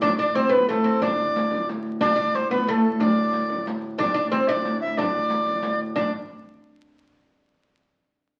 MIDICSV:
0, 0, Header, 1, 6, 480
1, 0, Start_track
1, 0, Tempo, 330033
1, 28, Time_signature, 6, 3, 24, 8
1, 12207, End_track
2, 0, Start_track
2, 0, Title_t, "Recorder"
2, 0, Program_c, 0, 74
2, 20, Note_on_c, 0, 74, 117
2, 248, Note_off_c, 0, 74, 0
2, 265, Note_on_c, 0, 74, 99
2, 511, Note_on_c, 0, 72, 89
2, 533, Note_off_c, 0, 74, 0
2, 761, Note_on_c, 0, 71, 94
2, 782, Note_off_c, 0, 72, 0
2, 996, Note_off_c, 0, 71, 0
2, 1014, Note_on_c, 0, 69, 98
2, 1491, Note_on_c, 0, 74, 105
2, 1513, Note_off_c, 0, 69, 0
2, 2444, Note_off_c, 0, 74, 0
2, 2927, Note_on_c, 0, 74, 115
2, 3422, Note_on_c, 0, 72, 95
2, 3444, Note_off_c, 0, 74, 0
2, 3644, Note_off_c, 0, 72, 0
2, 3653, Note_on_c, 0, 71, 92
2, 3892, Note_off_c, 0, 71, 0
2, 3892, Note_on_c, 0, 71, 86
2, 3939, Note_on_c, 0, 69, 94
2, 3953, Note_off_c, 0, 71, 0
2, 4372, Note_on_c, 0, 74, 106
2, 4394, Note_off_c, 0, 69, 0
2, 5326, Note_off_c, 0, 74, 0
2, 5790, Note_on_c, 0, 74, 100
2, 6241, Note_off_c, 0, 74, 0
2, 6268, Note_on_c, 0, 72, 83
2, 6508, Note_on_c, 0, 76, 89
2, 6529, Note_off_c, 0, 72, 0
2, 6565, Note_on_c, 0, 74, 97
2, 6580, Note_off_c, 0, 76, 0
2, 6985, Note_off_c, 0, 74, 0
2, 6993, Note_on_c, 0, 76, 104
2, 7233, Note_on_c, 0, 74, 96
2, 7255, Note_off_c, 0, 76, 0
2, 8435, Note_off_c, 0, 74, 0
2, 8678, Note_on_c, 0, 74, 83
2, 8901, Note_off_c, 0, 74, 0
2, 12207, End_track
3, 0, Start_track
3, 0, Title_t, "Oud"
3, 0, Program_c, 1, 24
3, 25, Note_on_c, 1, 62, 90
3, 257, Note_off_c, 1, 62, 0
3, 274, Note_on_c, 1, 62, 84
3, 509, Note_off_c, 1, 62, 0
3, 515, Note_on_c, 1, 60, 86
3, 719, Note_on_c, 1, 59, 81
3, 760, Note_off_c, 1, 60, 0
3, 983, Note_off_c, 1, 59, 0
3, 999, Note_on_c, 1, 57, 75
3, 1225, Note_on_c, 1, 60, 70
3, 1243, Note_off_c, 1, 57, 0
3, 1476, Note_off_c, 1, 60, 0
3, 1482, Note_on_c, 1, 62, 76
3, 2382, Note_off_c, 1, 62, 0
3, 2921, Note_on_c, 1, 62, 90
3, 3122, Note_off_c, 1, 62, 0
3, 3140, Note_on_c, 1, 62, 86
3, 3644, Note_off_c, 1, 62, 0
3, 3651, Note_on_c, 1, 59, 78
3, 3892, Note_off_c, 1, 59, 0
3, 3905, Note_on_c, 1, 57, 82
3, 4368, Note_on_c, 1, 62, 72
3, 4386, Note_off_c, 1, 57, 0
3, 5266, Note_off_c, 1, 62, 0
3, 5797, Note_on_c, 1, 62, 92
3, 6008, Note_off_c, 1, 62, 0
3, 6025, Note_on_c, 1, 62, 90
3, 6271, Note_off_c, 1, 62, 0
3, 6277, Note_on_c, 1, 60, 88
3, 6520, Note_off_c, 1, 60, 0
3, 6525, Note_on_c, 1, 62, 89
3, 7234, Note_off_c, 1, 62, 0
3, 7251, Note_on_c, 1, 62, 77
3, 8386, Note_off_c, 1, 62, 0
3, 8663, Note_on_c, 1, 62, 89
3, 8893, Note_off_c, 1, 62, 0
3, 12207, End_track
4, 0, Start_track
4, 0, Title_t, "Harmonium"
4, 0, Program_c, 2, 20
4, 0, Note_on_c, 2, 38, 73
4, 0, Note_on_c, 2, 45, 64
4, 2917, Note_off_c, 2, 45, 0
4, 2920, Note_off_c, 2, 38, 0
4, 2939, Note_on_c, 2, 45, 70
4, 2942, Note_on_c, 2, 38, 69
4, 8737, Note_off_c, 2, 45, 0
4, 8738, Note_off_c, 2, 38, 0
4, 12207, End_track
5, 0, Start_track
5, 0, Title_t, "Frame drum"
5, 30, Note_on_c, 9, 64, 89
5, 176, Note_off_c, 9, 64, 0
5, 515, Note_on_c, 9, 64, 28
5, 660, Note_off_c, 9, 64, 0
5, 755, Note_on_c, 9, 64, 78
5, 900, Note_off_c, 9, 64, 0
5, 1474, Note_on_c, 9, 64, 89
5, 1619, Note_off_c, 9, 64, 0
5, 1715, Note_on_c, 9, 64, 28
5, 1860, Note_off_c, 9, 64, 0
5, 1956, Note_on_c, 9, 64, 26
5, 2102, Note_off_c, 9, 64, 0
5, 2197, Note_on_c, 9, 64, 72
5, 2342, Note_off_c, 9, 64, 0
5, 2682, Note_on_c, 9, 64, 30
5, 2827, Note_off_c, 9, 64, 0
5, 2916, Note_on_c, 9, 64, 91
5, 3062, Note_off_c, 9, 64, 0
5, 3402, Note_on_c, 9, 64, 28
5, 3547, Note_off_c, 9, 64, 0
5, 3631, Note_on_c, 9, 64, 65
5, 3776, Note_off_c, 9, 64, 0
5, 4358, Note_on_c, 9, 64, 82
5, 4503, Note_off_c, 9, 64, 0
5, 4848, Note_on_c, 9, 64, 27
5, 4993, Note_off_c, 9, 64, 0
5, 5086, Note_on_c, 9, 64, 73
5, 5232, Note_off_c, 9, 64, 0
5, 5799, Note_on_c, 9, 64, 82
5, 5944, Note_off_c, 9, 64, 0
5, 6280, Note_on_c, 9, 64, 28
5, 6426, Note_off_c, 9, 64, 0
5, 6518, Note_on_c, 9, 64, 69
5, 6664, Note_off_c, 9, 64, 0
5, 7234, Note_on_c, 9, 64, 85
5, 7379, Note_off_c, 9, 64, 0
5, 7478, Note_on_c, 9, 64, 25
5, 7624, Note_off_c, 9, 64, 0
5, 7720, Note_on_c, 9, 64, 26
5, 7865, Note_off_c, 9, 64, 0
5, 7952, Note_on_c, 9, 64, 61
5, 8098, Note_off_c, 9, 64, 0
5, 8431, Note_on_c, 9, 64, 27
5, 8576, Note_off_c, 9, 64, 0
5, 8669, Note_on_c, 9, 64, 82
5, 8815, Note_off_c, 9, 64, 0
5, 12207, End_track
6, 0, Start_track
6, 0, Title_t, "Riq"
6, 22, Note_on_c, 9, 54, 62
6, 168, Note_off_c, 9, 54, 0
6, 510, Note_on_c, 9, 54, 72
6, 655, Note_off_c, 9, 54, 0
6, 768, Note_on_c, 9, 54, 21
6, 914, Note_off_c, 9, 54, 0
6, 1018, Note_on_c, 9, 54, 72
6, 1164, Note_off_c, 9, 54, 0
6, 1492, Note_on_c, 9, 54, 66
6, 1638, Note_off_c, 9, 54, 0
6, 1977, Note_on_c, 9, 54, 77
6, 2122, Note_off_c, 9, 54, 0
6, 2221, Note_on_c, 9, 54, 20
6, 2366, Note_off_c, 9, 54, 0
6, 2459, Note_on_c, 9, 54, 67
6, 2605, Note_off_c, 9, 54, 0
6, 2954, Note_on_c, 9, 54, 58
6, 3100, Note_off_c, 9, 54, 0
6, 3409, Note_on_c, 9, 54, 70
6, 3555, Note_off_c, 9, 54, 0
6, 3653, Note_on_c, 9, 54, 19
6, 3798, Note_off_c, 9, 54, 0
6, 3887, Note_on_c, 9, 54, 74
6, 4032, Note_off_c, 9, 54, 0
6, 4371, Note_on_c, 9, 54, 67
6, 4516, Note_off_c, 9, 54, 0
6, 4843, Note_on_c, 9, 54, 74
6, 4989, Note_off_c, 9, 54, 0
6, 5091, Note_on_c, 9, 54, 19
6, 5236, Note_off_c, 9, 54, 0
6, 5340, Note_on_c, 9, 54, 75
6, 5485, Note_off_c, 9, 54, 0
6, 5809, Note_on_c, 9, 54, 59
6, 5954, Note_off_c, 9, 54, 0
6, 6286, Note_on_c, 9, 54, 69
6, 6431, Note_off_c, 9, 54, 0
6, 6531, Note_on_c, 9, 54, 21
6, 6676, Note_off_c, 9, 54, 0
6, 6765, Note_on_c, 9, 54, 70
6, 6910, Note_off_c, 9, 54, 0
6, 7236, Note_on_c, 9, 54, 64
6, 7381, Note_off_c, 9, 54, 0
6, 7704, Note_on_c, 9, 54, 75
6, 7850, Note_off_c, 9, 54, 0
6, 7950, Note_on_c, 9, 54, 21
6, 8095, Note_off_c, 9, 54, 0
6, 8180, Note_on_c, 9, 54, 74
6, 8326, Note_off_c, 9, 54, 0
6, 8674, Note_on_c, 9, 54, 76
6, 8819, Note_off_c, 9, 54, 0
6, 12207, End_track
0, 0, End_of_file